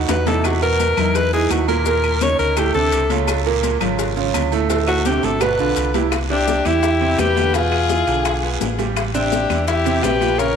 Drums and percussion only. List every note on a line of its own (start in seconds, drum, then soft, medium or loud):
0.09 cowbell medium
0.09 low bongo loud
0.09 high conga soft
0.09 low timbale medium
0.09 low agogo medium
0.09 short guiro medium
0.09 maracas medium
0.26 cowbell medium
0.26 low bongo medium
0.26 high conga medium
0.26 low timbale medium
0.26 low agogo medium
0.26 short guiro medium
0.26 maracas soft
0.44 cowbell loud
0.44 high conga soft
0.44 low agogo loud
0.44 long guiro medium
0.44 claves medium
0.44 maracas medium
0.62 high conga soft
0.62 maracas soft
0.79 cowbell medium
0.79 high conga medium
0.79 low agogo medium
0.79 short guiro medium
0.79 maracas medium
0.97 cowbell medium
0.97 high conga soft
0.97 low conga medium
0.97 low agogo loud
0.97 short guiro medium
0.97 claves medium
0.97 maracas soft
1.15 cowbell loud
1.15 high conga soft
1.15 low conga medium
1.15 long guiro medium
1.15 maracas medium
1.33 high conga soft
1.33 maracas soft
1.50 cowbell medium
1.50 high conga medium
1.50 low timbale medium
1.50 low agogo loud
1.50 short guiro medium
1.50 claves medium
1.50 maracas medium
1.68 high conga medium
1.68 low agogo medium
1.68 short guiro medium
1.68 maracas soft
1.86 cowbell loud
1.86 high conga soft
1.86 long guiro medium
1.86 maracas medium
2.04 high conga soft
2.04 low agogo loud
2.04 claves medium
2.04 maracas soft
2.21 cowbell medium
2.21 high conga loud
2.21 short guiro medium
2.21 maracas medium
2.39 high conga soft
2.39 low agogo medium
2.39 short guiro medium
2.39 maracas soft
2.57 cowbell loud
2.57 high conga soft
2.57 low agogo loud
2.57 long guiro medium
2.57 claves medium
2.57 maracas medium
2.74 high conga soft
2.74 maracas soft
2.92 cowbell medium
2.92 high conga soft
2.92 low agogo medium
2.92 short guiro medium
2.92 maracas medium
3.10 cowbell medium
3.10 high conga medium
3.10 low agogo medium
3.10 short guiro medium
3.10 maracas soft
3.27 cowbell loud
3.27 high conga soft
3.27 low agogo loud
3.27 long guiro medium
3.27 claves medium
3.27 maracas medium
3.46 high conga soft
3.46 maracas soft
3.63 cowbell medium
3.63 high conga medium
3.63 low agogo medium
3.63 short guiro medium
3.63 maracas medium
3.81 cowbell medium
3.81 high conga soft
3.81 low conga medium
3.81 low agogo loud
3.81 short guiro medium
3.81 claves medium
3.81 maracas soft
3.99 cowbell loud
3.99 high conga soft
3.99 long guiro medium
3.99 maracas medium
4.17 high conga soft
4.17 maracas soft
4.34 cowbell medium
4.34 high conga medium
4.34 low agogo loud
4.34 short guiro medium
4.34 claves medium
4.34 maracas medium
4.52 low agogo loud
4.52 short guiro medium
4.52 maracas soft
4.70 cowbell loud
4.70 high conga soft
4.70 high timbale loud
4.70 long guiro medium
4.70 maracas medium
4.87 high conga soft
4.87 high timbale loud
4.87 low agogo loud
4.87 claves medium
4.87 maracas soft
5.05 cowbell medium
5.05 high conga medium
5.05 high timbale medium
5.05 short guiro medium
5.05 maracas medium
5.23 high conga soft
5.23 low timbale medium
5.23 low agogo medium
5.23 short guiro medium
5.23 maracas soft
5.41 cowbell loud
5.41 high conga soft
5.41 low timbale loud
5.41 low agogo loud
5.41 long guiro medium
5.41 claves medium
5.41 maracas medium
5.59 high conga soft
5.59 maracas soft
5.76 cowbell medium
5.76 high conga soft
5.76 low agogo medium
5.76 short guiro medium
5.76 maracas medium
5.94 cowbell medium
5.94 high conga medium
5.94 low timbale medium
5.94 low agogo medium
5.94 short guiro medium
5.94 maracas soft
6.12 high bongo medium
6.12 high conga soft
6.12 high timbale loud
6.12 long guiro medium
6.12 claves medium
6.12 maracas medium
6.30 high bongo soft
6.30 high conga soft
6.30 high timbale medium
6.48 high bongo medium
6.48 high conga medium
6.48 low timbale medium
6.48 short guiro medium
6.48 maracas medium
6.65 high conga medium
6.65 high timbale medium
6.65 short guiro medium
6.65 claves medium
6.65 maracas soft
6.83 high bongo medium
6.83 high conga soft
6.83 high timbale medium
6.83 long guiro medium
6.83 maracas medium
7.01 high bongo soft
7.01 high conga soft
7.01 high timbale medium
7.18 high bongo soft
7.18 low bongo medium
7.18 high conga medium
7.18 high timbale medium
7.18 low timbale medium
7.18 short guiro medium
7.18 claves medium
7.18 maracas medium
7.36 high bongo soft
7.36 high conga medium
7.36 high timbale medium
7.36 short guiro medium
7.36 maracas soft
7.54 high bongo medium
7.54 high conga soft
7.54 long guiro medium
7.54 maracas medium
7.72 high bongo soft
7.72 high conga soft
7.72 high timbale medium
7.72 claves medium
7.89 high bongo medium
7.89 high conga medium
7.89 low timbale medium
7.89 short guiro medium
7.89 maracas medium
8.07 high timbale medium
8.07 short guiro medium
8.07 maracas soft
8.25 high bongo medium
8.25 high conga soft
8.25 high timbale medium
8.25 long guiro medium
8.25 claves medium
8.25 maracas medium
8.43 high bongo soft
8.43 high conga soft
8.43 high timbale medium
8.61 high bongo soft
8.61 low bongo medium
8.61 high conga medium
8.61 low timbale medium
8.61 short guiro medium
8.61 maracas medium
8.79 high bongo soft
8.79 high conga medium
8.79 high timbale medium
8.79 short guiro medium
8.79 maracas soft
8.96 high bongo medium
8.96 high conga soft
8.96 high timbale medium
8.96 long guiro medium
8.96 claves medium
8.96 maracas medium
9.14 high bongo soft
9.14 high conga soft
9.14 high timbale medium
9.14 maracas medium
9.32 high bongo medium
9.32 high conga medium
9.32 low timbale soft
9.32 short guiro medium
9.32 maracas medium
9.50 high conga medium
9.50 high timbale medium
9.50 short guiro medium
9.50 claves medium
9.50 maracas soft
9.68 high bongo medium
9.68 high conga soft
9.68 high timbale medium
9.68 long guiro medium
9.68 maracas medium
9.85 high bongo soft
9.85 high conga soft
9.85 high timbale medium
9.85 maracas medium
10.03 high bongo soft
10.03 low bongo medium
10.03 high conga medium
10.03 high timbale medium
10.03 low timbale medium
10.03 short guiro medium
10.03 claves medium
10.03 maracas medium
10.21 high bongo soft
10.21 high conga medium
10.21 high timbale medium
10.21 short guiro medium
10.21 maracas soft
10.39 high bongo medium
10.39 high conga soft
10.39 long guiro medium
10.39 maracas medium